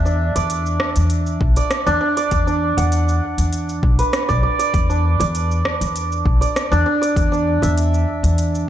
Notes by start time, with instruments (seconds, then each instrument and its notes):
Already playing: upright bass E2, santur E5
0.05 santur D4, cabasa
0.36 upright bass E2, santur D5, closed hi-hat, cabasa
0.50 closed hi-hat, cabasa
0.66 cabasa
0.80 cross-stick
0.96 upright bass E2, closed hi-hat, cabasa
1.10 closed hi-hat, cabasa
1.27 cabasa
1.41 upright bass B1, kick
1.56 santur D5, closed hi-hat, cabasa
1.71 cross-stick, closed hi-hat, cabasa
1.87 upright bass E2, santur D4, cabasa
2.01 santur D4
2.17 santur D5, closed hi-hat, cabasa
2.31 upright bass E2, kick, closed hi-hat, cabasa
2.47 santur D4, cabasa
2.77 upright bass E2, santur F#5, closed hi-hat, cabasa
2.92 closed hi-hat, cabasa
3.09 cabasa
3.38 upright bass E2, closed hi-hat, cabasa
3.53 closed hi-hat, cabasa
3.69 cabasa
3.83 upright bass B1, kick
3.99 santur B4, closed hi-hat, cabasa
4.13 cross-stick, closed hi-hat, cabasa
4.29 upright bass B1, santur D5, kick, cabasa
4.43 santur D5
4.59 santur D5, closed hi-hat, cabasa
4.74 upright bass E2, kick, closed hi-hat, cabasa
4.90 santur D4, cabasa
5.20 upright bass E2, santur D5, closed hi-hat, cabasa
5.35 closed hi-hat, cabasa
5.51 cabasa
5.65 cross-stick
5.81 upright bass E2, closed hi-hat, cabasa
5.96 closed hi-hat, cabasa
6.12 cabasa
6.25 upright bass B1, kick
6.41 santur D5, closed hi-hat, cabasa
6.56 cross-stick, closed hi-hat, cabasa
6.72 upright bass E2, santur D4, cabasa
6.86 santur D4
7.02 santur D5, closed hi-hat, cabasa
7.16 upright bass E2, kick, closed hi-hat, cabasa
7.32 santur D4, cabasa
7.62 upright bass E2, santur E5, closed hi-hat, cabasa
7.78 closed hi-hat, cabasa
7.94 cabasa
8.23 upright bass E2, closed hi-hat, cabasa
8.38 closed hi-hat, cabasa
8.55 cabasa